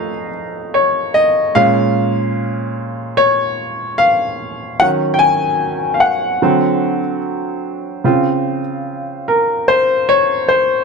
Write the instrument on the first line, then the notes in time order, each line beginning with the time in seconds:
grand piano
Already playing: F3 A3 D#4 C#5 D#5 F5
0.74 C#5
1.14 D#5
1.55 A#2 G#3 C#4 F5
3.17 C#5
3.98 F5
4.80 D#3 F#3 C#4 F#5
5.14 G5
5.19 G#5
5.94 F5
6.00 F#5
6.42 D3 F#3 C4
8.04 C#3 C4 F4
9.28 A#4
9.68 C5
10.09 C#5
10.48 C5